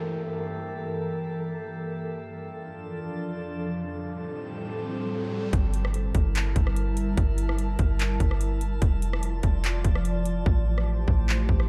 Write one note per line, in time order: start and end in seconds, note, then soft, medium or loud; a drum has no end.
0.00 2.21 G2 medium
0.00 2.21 E3 medium
0.00 2.21 A#3 medium
0.00 2.21 G4 medium
0.00 3.85 A4 medium
0.00 2.21 A#4 medium
0.00 2.21 E5 medium
0.00 2.21 A5 medium
0.00 downlifter medium
2.24 3.87 F2 medium
2.24 3.87 F3 medium
2.24 3.87 D4 medium
2.24 3.87 F4 medium
2.24 3.87 D5 medium
2.24 3.87 A5 medium
2.24 riser medium
3.88 5.51 A2 medium
3.88 5.51 G3 medium
3.88 5.51 C4 medium
3.88 5.51 G4 medium
3.88 5.51 A4 medium
3.88 5.51 C5 medium
3.88 5.51 A5 medium
5.53 6.12 G1 loud
5.53 8.79 G3 medium
5.53 8.79 E4 medium
5.53 8.79 A#4 medium
5.53 11.69 A5 medium
5.53 10.42 A5 medium
5.53 kick loud
5.53 closed hi-hat medium
5.74 closed hi-hat medium
5.85 cross-stick loud
5.94 closed hi-hat medium
6.15 6.54 G1 loud
6.15 kick medium
6.15 closed hi-hat medium
6.35 clap loud
6.35 closed hi-hat medium
6.56 7.15 G1 loud
6.56 kick medium
6.56 closed hi-hat medium
6.67 cross-stick medium
6.76 closed hi-hat medium
6.97 closed hi-hat medium
7.17 7.77 G1 loud
7.17 kick loud
7.17 closed hi-hat medium
7.38 closed hi-hat medium
7.49 cross-stick medium
7.59 closed hi-hat medium
7.79 8.19 G1 loud
7.79 kick medium
7.79 closed hi-hat medium
8.00 clap loud
8.00 closed hi-hat medium
8.20 8.79 G1 loud
8.20 kick medium
8.20 closed hi-hat medium
8.31 cross-stick medium
8.41 closed hi-hat medium
8.61 closed hi-hat medium
8.82 9.41 F1 loud
8.82 10.45 F3 medium
8.82 10.44 F4 medium
8.82 10.45 F4 medium
8.82 10.44 D5 medium
8.82 10.45 D5 medium
8.82 kick loud
8.82 closed hi-hat medium
9.02 closed hi-hat medium
9.13 cross-stick loud
9.23 closed hi-hat medium
9.43 9.83 F1 loud
9.43 kick medium
9.43 closed hi-hat medium
9.64 clap loud
9.64 closed hi-hat medium
9.85 10.44 F1 loud
9.85 kick medium
9.85 closed hi-hat medium
9.95 cross-stick medium
10.05 closed hi-hat medium
10.26 closed hi-hat medium
10.46 11.05 A1 loud
10.46 11.69 A3 medium
10.46 11.69 E4 medium
10.46 11.69 G4 medium
10.46 11.69 C5 medium
10.46 kick loud
10.78 cross-stick medium
11.08 11.47 A1 loud
11.08 kick medium
11.29 clap loud
11.49 11.69 A1 loud
11.49 kick medium
11.60 cross-stick medium